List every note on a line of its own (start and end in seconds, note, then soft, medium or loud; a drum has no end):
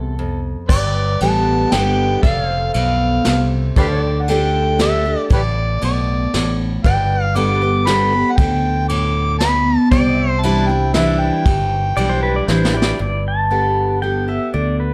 0.00 0.54 C2 medium
0.00 0.16 E2 medium
0.00 0.14 C3 medium
0.00 0.40 A4 medium
0.19 0.67 F2 medium
0.69 1.16 G1 medium
0.69 1.68 G2 medium
0.69 2.21 B4 medium
0.69 1.17 D5 medium
0.69 2.22 D5 medium
0.69 2.22 G5 medium
0.69 kick loud
0.69 crash loud
1.20 1.65 A1 medium
1.20 1.70 D3 medium
1.20 1.70 G3 medium
1.20 1.71 B3 loud
1.20 1.74 A5 loud
1.20 ride medium
1.25 1.71 G4 medium
1.72 2.16 G1 medium
1.72 2.21 D3 medium
1.72 2.22 G3 loud
1.72 2.22 B3 loud
1.72 2.22 G4 loud
1.72 2.22 G5 loud
1.72 snare medium
1.72 ride medium
2.23 2.69 F1 medium
2.23 3.21 F2 medium
2.23 3.75 A4 medium
2.23 2.49 D5 medium
2.23 2.71 F5 loud
2.23 3.77 F5 medium
2.23 kick loud
2.23 ride medium
2.49 3.76 C5 medium
2.74 3.18 B1 medium
2.74 3.24 B2 medium
2.74 3.47 F5 medium
2.74 ride medium
3.25 3.70 C2 medium
3.25 3.75 C3 medium
3.25 snare medium
3.25 ride medium
3.76 5.15 D2 medium
3.76 4.28 D3 medium
3.76 3.86 G4 medium
3.76 6.82 A4 medium
3.76 3.87 B4 medium
3.76 4.03 C5 medium
3.76 4.23 D5 medium
3.76 4.04 F5 medium
3.76 kick loud
3.76 ride medium
4.03 6.82 D5 medium
4.03 6.83 G5 medium
4.22 4.31 F#5 medium
4.28 4.77 D3 medium
4.28 4.78 A3 medium
4.28 4.78 D4 medium
4.28 4.78 G4 loud
4.28 4.80 G5 loud
4.28 ride medium
4.79 5.04 D3 medium
4.79 5.05 A3 medium
4.79 5.05 D4 loud
4.79 5.04 G4 loud
4.79 5.28 E5 loud
4.79 snare medium
4.79 ride medium
5.05 5.31 D4 soft
5.05 5.30 G4 medium
5.30 5.77 A1 medium
5.30 6.28 A2 medium
5.30 5.41 G4 medium
5.30 5.41 B4 medium
5.30 5.80 D5 medium
5.30 kick loud
5.30 ride medium
5.82 6.26 B1 medium
5.82 6.31 B2 medium
5.82 6.56 D5 medium
5.82 ride medium
6.34 6.77 A1 medium
6.34 6.83 A2 medium
6.34 snare medium
6.34 ride medium
6.84 8.23 G1 medium
6.84 7.83 G2 medium
6.84 9.90 B4 medium
6.84 9.90 D5 medium
6.84 7.22 G5 loud
6.84 9.90 G5 medium
6.84 kick loud
6.84 ride medium
7.22 7.37 F5 loud
7.35 7.60 D3 medium
7.35 7.61 G3 medium
7.35 7.61 B3 loud
7.35 7.61 G4 loud
7.35 7.88 D6 loud
7.35 ride medium
7.62 7.87 B3 medium
7.62 7.86 G4 medium
7.87 8.12 D3 medium
7.87 8.12 G3 loud
7.87 8.13 B3 medium
7.87 8.12 G4 medium
7.87 8.33 B5 loud
7.87 snare medium
7.87 ride medium
8.13 8.38 B3 soft
8.13 8.37 G4 medium
8.31 8.39 F#5 medium
8.37 9.76 D2 medium
8.37 9.36 D3 medium
8.37 8.88 G5 loud
8.37 kick loud
8.37 ride medium
8.88 9.38 A2 medium
8.88 9.37 D6 loud
8.88 ride medium
9.39 9.90 B2 medium
9.39 9.87 B5 loud
9.39 snare medium
9.39 ride medium
9.91 11.30 C2 loud
9.91 10.90 C3 medium
9.91 12.96 C5 medium
9.91 10.29 D5 medium
9.91 10.18 D5 medium
9.91 12.97 G5 medium
9.91 kick loud
9.91 ride medium
10.18 12.97 E5 medium
10.29 10.43 C5 medium
10.42 10.68 E3 medium
10.42 10.68 G3 medium
10.42 10.69 D4 loud
10.42 10.68 E4 loud
10.42 10.68 A5 medium
10.42 ride medium
10.67 10.94 E4 medium
10.67 10.93 G5 medium
10.71 10.94 D4 medium
10.94 11.43 E3 medium
10.94 11.44 G3 medium
10.94 11.44 D4 loud
10.94 11.44 E4 loud
10.94 11.21 E5 medium
10.94 snare medium
10.94 ride medium
11.20 12.48 G5 medium
11.45 11.92 G1 medium
11.45 12.43 G2 medium
11.45 kick loud
11.45 ride medium
11.96 12.41 B1 medium
11.96 12.45 E3 medium
11.96 12.46 G3 medium
11.96 12.46 D4 medium
11.96 12.46 E4 loud
11.96 12.09 D5 medium
11.96 ride medium
12.09 12.22 C5 medium
12.23 12.35 B4 medium
12.36 12.48 D5 medium
12.47 12.92 A1 medium
12.47 12.73 E3 medium
12.47 12.74 G3 loud
12.47 12.74 D4 medium
12.47 12.73 E4 medium
12.47 12.73 C5 medium
12.47 snare medium
12.65 snare medium
12.74 12.99 D4 soft
12.74 12.98 E4 medium
12.74 12.99 G4 medium
12.74 13.01 D5 medium
12.82 snare loud
12.99 14.38 G1 medium
12.99 13.97 G2 medium
12.99 13.27 D5 medium
13.28 14.02 A5 medium
13.50 13.99 D3 soft
13.50 14.00 G3 medium
13.50 14.00 B3 medium
13.50 14.00 G4 medium
14.02 14.27 D3 medium
14.02 14.27 G3 medium
14.02 14.28 B3 medium
14.02 14.27 G4 medium
14.02 14.29 G5 medium
14.28 14.53 B3 soft
14.28 14.53 G4 soft
14.28 14.55 E5 medium
14.54 14.94 D2 medium
14.54 14.94 D3 medium
14.54 14.80 D5 medium
14.80 14.94 B4 medium